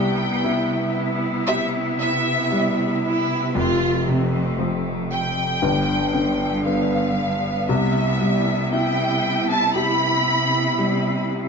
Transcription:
Already playing: grand piano C2 C3 G3, string section C3 B3 E4, violin section G5
0.44 grand piano E4
1.47 grand piano G4, violin section E5
2.00 violin section E5
2.52 grand piano G3
3.03 cello section E4
3.55 grand piano F1 F2, string section F2 A3, cello section F4
4.06 grand piano C3, cello section C4
4.58 grand piano F3
5.12 violin section G5
5.62 grand piano G1 G2, string section G2 D3 B3
6.14 grand piano D3
6.66 grand piano B3, violin section F5
7.68 grand piano C2 C3, string section C3 E4, violin section E5
8.20 grand piano G3
8.72 grand piano E4, violin section G5
9.49 violin section A5
9.75 grand piano G4, violin section B5
10.79 grand piano G3

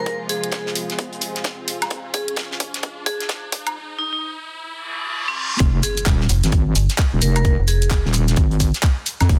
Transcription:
Already playing: string section C3 F3 G#3 F4, ambient pad F4 G#4 C5 G#5, riser
0.06 kick, closed hi-hat
0.29 vibraphone G#4, closed hi-hat, open hi-hat
0.44 closed hi-hat
0.52 kick, snare, closed hi-hat
0.66 snare
0.76 closed hi-hat, open hi-hat
0.90 snare, closed hi-hat
0.99 kick, closed hi-hat
1.13 closed hi-hat
1.21 closed hi-hat, open hi-hat
1.35 snare, closed hi-hat
1.44 kick, snare, closed hi-hat
1.68 closed hi-hat, open hi-hat
1.82 snare, closed hi-hat, high woodblock
1.90 kick, closed hi-hat
2.14 vibraphone G#4, kick, closed hi-hat, open hi-hat
2.28 closed hi-hat
2.36 kick, snare, closed hi-hat
2.51 snare
2.60 kick, closed hi-hat, open hi-hat
2.74 snare, closed hi-hat
2.83 kick, closed hi-hat
3.06 vibraphone G#4, kick, closed hi-hat, open hi-hat
3.20 snare, closed hi-hat
3.29 kick, snare, closed hi-hat
3.52 kick, closed hi-hat, open hi-hat
3.67 closed hi-hat, high woodblock
3.99 vibraphone D#4
4.13 vibraphone D#4
4.68 reverse cymbal
5.28 vibraphone C4
5.60 wobble bass F1, kick, closed hi-hat, impact, shaker
5.83 vibraphone G#4, closed hi-hat, open hi-hat, shaker
5.97 closed hi-hat, shaker
6.06 wobble bass D#1, kick, snare, clap, closed hi-hat, shaker
6.21 snare
6.29 fm bass F1, closed hi-hat, open hi-hat, shaker
6.44 wobble bass G#1, snare, closed hi-hat, shaker
6.52 kick, closed hi-hat, shaker
6.75 fm bass G1, closed hi-hat, open hi-hat, shaker
6.90 snare, closed hi-hat, shaker
6.98 kick, snare, clap, closed hi-hat, shaker
7.13 wobble bass D#1
7.22 wobble bass F1, vibraphone A#4, closed hi-hat, open hi-hat, shaker
7.36 vibraphone A#4, closed hi-hat, high woodblock, shaker
7.45 kick, closed hi-hat, shaker
7.59 fm bass F1
7.68 vibraphone G#4, closed hi-hat, open hi-hat, shaker
7.82 closed hi-hat, shaker
7.91 kick, snare, clap, closed hi-hat, shaker
8.05 wobble bass D#1, snare
8.13 clap, closed hi-hat, open hi-hat, shaker
8.28 snare, closed hi-hat, shaker
8.36 wobble bass G#1, kick, closed hi-hat, shaker
8.51 closed hi-hat
8.60 kick, closed hi-hat, open hi-hat, shaker
8.74 snare, closed hi-hat, shaker
8.83 kick, snare, clap, closed hi-hat, shaker
9.06 closed hi-hat, open hi-hat, shaker
9.21 wobble bass F2, snare, closed hi-hat, high woodblock, shaker
9.29 wobble bass F1, kick, closed hi-hat, shaker

